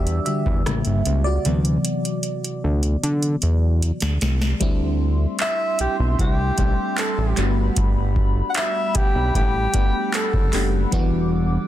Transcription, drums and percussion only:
0.07 closed hi-hat soft
0.26 closed hi-hat medium
0.46 kick medium
0.66 cross-stick loud
0.66 closed hi-hat medium
0.85 closed hi-hat soft
1.06 closed hi-hat medium
1.45 closed hi-hat medium
1.65 closed hi-hat soft
1.85 closed hi-hat medium
2.05 closed hi-hat medium
2.23 closed hi-hat medium
2.44 closed hi-hat soft
2.83 closed hi-hat soft
3.04 closed hi-hat medium
3.23 closed hi-hat soft
3.42 closed hi-hat medium
3.82 closed hi-hat medium
4.00 snare medium
4.00 closed hi-hat soft
4.21 snare loud
4.21 closed hi-hat medium
4.42 snare medium
4.61 kick loud
4.61 closed hi-hat medium
5.39 clap loud
5.39 closed hi-hat medium
5.79 closed hi-hat medium
6.19 kick medium
6.19 closed hi-hat medium
6.58 kick medium
6.58 closed hi-hat medium
6.98 clap loud
6.98 closed hi-hat medium
7.37 clap medium
7.37 closed hi-hat medium
7.77 kick loud
7.77 closed hi-hat medium
8.16 kick medium
8.54 clap loud
8.54 closed hi-hat medium
8.95 kick loud
8.95 closed hi-hat medium
9.35 kick medium
9.35 closed hi-hat medium
9.74 kick medium
9.74 closed hi-hat medium
10.14 clap loud
10.14 closed hi-hat medium
10.34 kick medium
10.53 clap medium
10.53 open hi-hat medium
10.92 kick loud
10.92 closed hi-hat medium

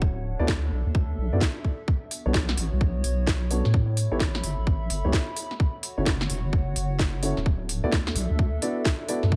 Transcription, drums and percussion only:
0.02 kick loud
0.48 kick loud
0.48 snare loud
0.95 kick loud
1.41 kick loud
1.41 snare loud
1.65 kick medium
1.88 kick loud
2.11 open hi-hat medium
2.34 kick loud
2.34 snare loud
2.49 snare medium
2.58 open hi-hat medium
2.81 kick loud
3.04 open hi-hat medium
3.27 kick loud
3.27 snare loud
3.51 open hi-hat medium
3.65 snare soft
3.74 kick loud
3.97 open hi-hat loud
4.20 kick loud
4.20 snare loud
4.35 snare medium
4.44 open hi-hat loud
4.67 kick loud
4.90 open hi-hat loud
5.13 kick loud
5.13 snare loud
5.37 open hi-hat medium
5.51 snare soft
5.60 kick loud
5.83 open hi-hat loud
6.06 kick loud
6.06 snare loud
6.21 snare medium
6.30 open hi-hat loud
6.53 kick loud
6.76 open hi-hat loud
6.99 kick loud
6.99 snare loud
7.23 open hi-hat loud
7.37 snare soft
7.46 kick loud
7.69 open hi-hat loud
7.92 kick loud
7.92 snare loud
8.07 snare medium
8.16 open hi-hat loud
8.39 kick loud
8.62 open hi-hat loud
8.85 kick loud
8.85 snare loud
9.09 open hi-hat loud
9.23 snare soft
9.32 kick loud

